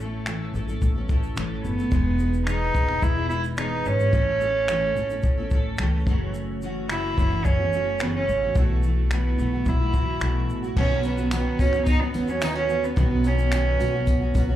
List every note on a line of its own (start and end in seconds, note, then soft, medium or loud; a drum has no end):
0.00 0.50 A1 medium
0.00 0.26 A3 medium
0.00 0.50 A3 medium
0.00 0.26 C#4 medium
0.00 0.27 E4 medium
0.00 0.27 A4 medium
0.26 0.54 A2 medium
0.26 0.54 E3 medium
0.26 0.52 A3 medium
0.26 0.53 C#4 medium
0.26 0.54 E4 medium
0.26 0.55 A4 medium
0.26 finger snap loud
0.26 shaker medium
0.53 0.80 A1 medium
0.53 0.67 A3 medium
0.53 0.68 C#4 medium
0.53 0.67 E4 medium
0.53 0.66 A4 medium
0.53 shaker soft
0.67 0.97 A3 soft
0.67 0.96 C#4 soft
0.67 0.95 E4 medium
0.67 0.94 A4 medium
0.67 shaker soft
0.82 1.33 A1 medium
0.82 kick medium
0.82 shaker medium
0.95 1.07 A3 soft
0.95 1.09 C#4 medium
0.95 1.10 E4 soft
0.95 1.09 A4 medium
1.08 1.36 A3 medium
1.08 1.37 C#4 medium
1.08 1.38 E4 medium
1.08 1.37 A4 medium
1.08 kick medium
1.08 shaker soft
1.23 shaker soft
1.36 1.62 A1 medium
1.36 1.78 A2 medium
1.36 1.78 E3 medium
1.36 1.79 A3 medium
1.36 1.78 C#4 medium
1.36 1.77 E4 medium
1.36 1.76 A4 medium
1.36 finger snap loud
1.36 shaker medium
1.64 1.90 F#1 medium
1.64 2.43 B3 medium
1.64 shaker soft
1.77 1.91 A3 soft
1.77 1.92 C#4 soft
1.77 1.92 E4 soft
1.77 1.92 A4 soft
1.77 shaker soft
1.91 2.71 E1 medium
1.91 2.19 E3 medium
1.91 2.17 G#3 medium
1.91 2.18 B3 medium
1.91 2.19 D#4 medium
1.91 2.20 G#4 medium
1.91 kick medium
1.91 shaker medium
2.18 2.46 G#3 medium
2.18 2.46 B3 medium
2.18 2.47 D#4 medium
2.18 2.47 G#4 medium
2.18 shaker soft
2.34 shaker soft
2.47 2.75 E3 medium
2.47 2.73 G#3 medium
2.47 2.74 B3 medium
2.47 3.04 D#4 medium
2.47 2.74 D#4 medium
2.47 2.76 G#4 medium
2.47 finger snap loud
2.47 shaker medium
2.74 3.00 E1 medium
2.74 2.88 G#3 soft
2.74 2.89 B3 medium
2.74 2.87 D#4 medium
2.74 2.86 G#4 medium
2.74 kick medium
2.74 shaker soft
2.87 3.17 B3 soft
2.87 3.16 D#4 soft
2.87 3.14 G#4 soft
2.87 finger snap soft
3.02 3.81 E1 medium
3.02 3.29 E4 loud
3.02 kick medium
3.02 shaker medium
3.15 3.28 B3 soft
3.15 3.30 D#4 soft
3.15 3.30 G#4 medium
3.29 3.56 G#3 medium
3.29 3.57 B3 medium
3.29 3.57 D#4 medium
3.29 3.42 E4 medium
3.29 3.58 G#4 medium
3.29 shaker soft
3.44 shaker soft
3.57 3.99 E3 medium
3.57 3.99 G#3 medium
3.57 3.99 B3 medium
3.57 3.88 D#4 medium
3.57 3.99 D#4 medium
3.57 3.98 G#4 medium
3.57 finger snap loud
3.57 shaker medium
3.85 4.11 G#1 medium
3.85 5.52 C#4 medium
3.85 shaker soft
3.99 4.14 B3 soft
3.99 4.14 D#4 soft
3.99 4.13 G#4 soft
3.99 shaker soft
4.13 4.92 A1 medium
4.13 4.41 A2 medium
4.13 4.41 E3 medium
4.13 4.39 A3 medium
4.13 4.40 C#4 medium
4.13 4.41 E4 medium
4.13 4.42 A4 medium
4.13 kick medium
4.13 shaker medium
4.40 4.68 A3 medium
4.40 4.69 C#4 medium
4.40 4.69 E4 medium
4.40 4.69 A4 medium
4.40 shaker soft
4.68 4.96 A2 medium
4.68 4.96 E3 medium
4.68 4.94 A3 medium
4.68 4.96 C#4 medium
4.68 4.96 E4 medium
4.68 4.97 A4 loud
4.68 finger snap loud
4.68 shaker medium
4.95 5.22 A1 medium
4.95 5.10 A3 medium
4.95 5.10 C#4 medium
4.95 5.10 E4 medium
4.95 5.09 A4 medium
4.95 shaker soft
5.10 5.39 A3 soft
5.10 5.38 C#4 medium
5.10 5.37 E4 medium
5.10 5.36 A4 soft
5.10 shaker soft
5.23 5.75 A1 medium
5.23 kick medium
5.23 shaker medium
5.38 5.50 A3 soft
5.38 5.52 C#4 soft
5.38 5.52 E4 medium
5.38 5.51 A4 medium
5.50 5.79 A3 medium
5.50 5.80 C#4 medium
5.50 5.80 E4 medium
5.50 kick medium
5.50 shaker soft
5.55 5.81 A4 medium
5.77 6.05 C#2 medium
5.77 6.07 A2 medium
5.77 6.07 E3 medium
5.77 6.07 A3 medium
5.77 finger snap loud
5.77 shaker medium
5.82 6.08 C#4 medium
5.82 6.08 E4 medium
5.82 6.08 A4 loud
6.07 7.13 F#1 medium
6.07 6.62 F#2 medium
6.07 6.63 C#3 medium
6.07 6.62 E3 medium
6.07 6.63 A3 medium
6.07 6.63 C#4 medium
6.07 6.65 F#4 medium
6.07 kick loud
6.07 shaker soft
6.34 shaker medium
6.62 6.89 E3 medium
6.62 6.89 A3 medium
6.62 6.89 C#4 medium
6.62 6.90 F#4 medium
6.62 shaker soft
6.89 7.17 F#2 medium
6.89 7.17 C#3 medium
6.89 7.16 E3 medium
6.89 7.17 A3 medium
6.89 7.18 C#4 medium
6.89 7.47 E4 loud
6.89 7.18 F#4 medium
6.89 finger snap loud
6.89 shaker medium
7.17 7.43 F#1 medium
7.17 7.31 E3 medium
7.17 7.31 A3 medium
7.17 7.30 C#4 medium
7.17 7.29 F#4 medium
7.17 kick medium
7.17 shaker soft
7.30 7.60 E3 soft
7.30 7.59 A3 soft
7.30 7.59 C#4 soft
7.30 7.58 F#4 medium
7.45 8.24 F#1 medium
7.45 8.02 C#4 medium
7.45 kick medium
7.45 shaker medium
7.59 7.72 E3 soft
7.59 7.73 A3 soft
7.59 7.73 C#4 soft
7.59 7.73 F#4 soft
7.73 8.01 E3 medium
7.73 8.01 A3 medium
7.73 8.01 C#4 medium
7.73 8.02 F#4 medium
7.73 shaker soft
7.99 8.42 F#2 medium
7.99 8.43 C#3 medium
7.99 8.43 E3 medium
7.99 8.43 A3 medium
7.99 8.14 B3 medium
7.99 8.42 C#4 medium
7.99 8.41 F#4 medium
7.99 finger snap loud
7.99 shaker medium
8.16 8.59 C#4 medium
8.28 8.54 A1 medium
8.28 shaker soft
8.42 8.56 E3 soft
8.42 8.56 A3 soft
8.42 8.57 C#4 soft
8.42 8.56 F#4 soft
8.55 9.34 B1 medium
8.55 8.84 B2 medium
8.55 8.82 E3 medium
8.55 9.14 A3 medium
8.55 8.84 A3 medium
8.55 8.85 E4 medium
8.55 8.85 F#4 medium
8.55 kick loud
8.55 shaker medium
8.83 9.11 E3 medium
8.83 9.12 A3 medium
8.83 9.12 E4 medium
8.83 9.12 F#4 medium
8.83 shaker soft
9.11 9.39 B2 medium
9.11 9.37 E3 medium
9.11 9.38 A3 medium
9.11 9.70 B3 medium
9.11 9.40 E4 medium
9.11 9.40 F#4 medium
9.11 finger snap loud
9.11 shaker medium
9.38 9.64 B1 medium
9.38 9.52 E3 medium
9.38 9.53 A3 medium
9.38 9.53 E4 medium
9.38 9.52 F#4 medium
9.38 shaker soft
9.53 9.81 A3 soft
9.53 9.80 E4 soft
9.53 9.79 F#4 soft
9.65 10.17 B1 medium
9.65 10.50 E4 medium
9.65 kick medium
9.65 shaker medium
9.80 9.94 A3 soft
9.80 9.95 E4 soft
9.80 9.94 F#4 soft
9.94 10.21 E3 medium
9.94 10.22 A3 medium
9.94 10.22 E4 medium
9.94 10.23 F#4 medium
9.94 kick medium
9.94 shaker soft
10.20 10.49 B1 medium
10.20 10.63 B2 medium
10.20 10.63 E3 medium
10.20 10.64 A3 medium
10.20 10.63 E4 medium
10.20 10.61 F#4 medium
10.20 finger snap loud
10.20 shaker medium
10.49 10.75 A1 medium
10.49 shaker soft
10.63 10.78 A3 soft
10.63 10.77 E4 soft
10.63 10.77 F#4 medium
10.63 shaker soft
10.76 11.42 B1 loud
10.76 10.90 B2 medium
10.76 10.91 D#3 medium
10.76 10.91 F#3 medium
10.76 10.91 B3 medium
10.76 11.03 C#4 medium
10.76 10.90 C#4 medium
10.76 10.89 F#4 medium
10.76 kick loud
10.76 crash medium
10.90 11.03 F#3 soft
10.90 11.04 B3 soft
10.90 11.05 C#4 soft
10.90 11.04 F#4 medium
11.03 11.18 F#3 medium
11.03 11.18 B3 medium
11.03 11.31 B3 medium
11.03 11.17 C#4 medium
11.03 11.16 F#4 medium
11.03 tambourine soft
11.03 shaker soft
11.17 11.31 F#3 soft
11.17 11.31 B3 soft
11.17 11.32 C#4 soft
11.17 11.32 F#4 medium
11.17 shaker soft
11.31 11.73 B2 medium
11.31 11.73 D#3 medium
11.31 11.73 F#3 medium
11.31 11.61 B3 medium
11.31 11.74 B3 medium
11.31 11.73 C#4 medium
11.31 11.72 F#4 medium
11.31 finger snap loud
11.31 tambourine medium
11.31 shaker medium
11.59 11.98 C#2 medium
11.59 11.85 C#4 medium
11.59 12.41 F#4 medium
11.59 kick medium
11.59 tambourine soft
11.59 shaker soft
11.73 12.02 F#3 soft
11.73 12.02 B3 soft
11.73 12.01 C#4 soft
11.73 12.00 F#4 soft
11.73 finger snap soft
11.73 shaker soft
11.86 13.51 B3 medium
11.86 12.02 D#4 loud
11.86 kick medium
11.86 tambourine soft
11.86 shaker medium
12.00 12.13 F#3 soft
12.00 12.30 B3 medium
12.00 12.14 B3 soft
12.00 12.15 C#4 medium
12.00 12.15 F#4 soft
12.14 12.94 D#2 medium
12.14 12.28 F#3 medium
12.14 12.29 B3 medium
12.14 12.28 C#4 medium
12.14 12.27 F#4 medium
12.14 tambourine soft
12.14 shaker soft
12.28 12.42 F#3 soft
12.28 12.42 B3 soft
12.28 12.44 C#4 medium
12.28 12.43 C#4 soft
12.28 12.42 F#4 medium
12.28 shaker soft
12.41 12.70 B2 medium
12.41 12.70 D#3 medium
12.41 12.68 F#3 medium
12.41 12.69 B3 medium
12.41 12.70 C#4 medium
12.41 12.56 D#4 medium
12.41 12.55 E4 medium
12.41 12.71 F#4 medium
12.41 finger snap loud
12.41 tambourine medium
12.41 shaker medium
12.55 12.86 C#4 medium
12.55 13.78 F#4 medium
12.69 12.96 F#3 medium
12.69 12.96 B3 medium
12.69 12.97 C#4 medium
12.69 12.97 F#4 medium
12.69 shaker soft
12.84 12.98 B3 medium
12.84 shaker soft
12.96 13.76 B1 loud
12.96 13.11 B2 medium
12.96 13.11 D#3 medium
12.96 13.11 F#3 medium
12.96 13.11 B3 medium
12.96 13.29 B3 medium
12.96 13.10 C#4 medium
12.96 13.09 F#4 medium
12.96 kick loud
12.96 tambourine soft
12.96 shaker medium
13.10 13.23 F#3 soft
13.10 13.24 B3 soft
13.10 13.25 C#4 soft
13.10 13.24 F#4 medium
13.24 13.39 F#3 medium
13.24 13.39 B3 medium
13.24 13.38 C#4 medium
13.24 14.36 C#4 medium
13.24 13.37 F#4 medium
13.24 tambourine soft
13.24 shaker medium
13.38 13.52 F#3 soft
13.38 13.52 B3 soft
13.38 13.53 C#4 soft
13.38 13.52 F#4 medium
13.38 shaker soft
13.52 13.94 B2 medium
13.52 13.94 D#3 medium
13.52 13.94 F#3 medium
13.52 13.94 B3 medium
13.52 13.94 C#4 medium
13.52 13.92 F#4 medium
13.52 finger snap loud
13.52 tambourine medium
13.52 shaker medium
13.79 14.31 B1 medium
13.79 14.56 F#4 medium
13.79 tambourine soft
13.79 shaker soft
13.93 14.22 F#3 soft
13.93 14.22 B3 soft
13.93 14.21 C#4 medium
13.93 14.19 F#4 medium
14.06 14.56 B3 medium
14.06 kick medium
14.06 tambourine medium
14.06 shaker medium
14.21 14.33 F#3 soft
14.21 14.35 B3 medium
14.21 14.36 C#4 medium
14.21 14.35 F#4 medium
14.35 14.56 B1 medium
14.35 14.49 F#3 medium
14.35 14.49 B3 medium
14.35 14.49 C#4 medium
14.35 14.47 F#4 medium
14.35 kick medium
14.35 tambourine soft
14.35 shaker soft
14.49 14.56 F#3 soft
14.49 14.56 B3 medium
14.49 14.56 C#4 medium
14.49 14.56 F#4 medium